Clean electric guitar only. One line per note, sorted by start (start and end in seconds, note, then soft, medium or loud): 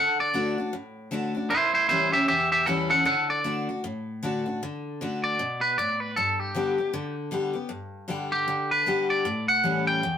0.00 0.18 A4 medium
0.00 0.19 F#5 loud
0.20 0.58 D5 loud
1.50 1.72 E4 medium
1.50 1.74 C5 loud
1.74 1.87 E4 medium
1.74 1.88 C5 medium
1.89 2.11 E4 medium
1.89 2.12 C5 medium
2.12 2.27 G4 medium
2.12 2.27 E5 medium
2.28 2.50 G4 medium
2.28 2.51 E5 medium
2.52 2.66 G4 medium
2.52 2.67 E5 medium
2.66 2.89 A4 medium
2.66 2.89 F#5 medium
2.90 3.05 A4 medium
2.90 3.05 F#5 medium
3.06 3.28 A4 medium
3.06 3.29 F#5 medium
3.30 3.67 D5 medium
5.24 5.61 D5 medium
5.61 5.77 B4 medium
5.78 6.00 D5 medium
6.00 6.15 B4 medium
6.16 6.40 A4 medium
6.40 7.15 G4 loud
8.32 8.70 G4 loud
8.71 9.09 B4 medium
9.10 9.48 D5 medium
9.48 9.86 F#5 medium
9.87 10.18 G5 loud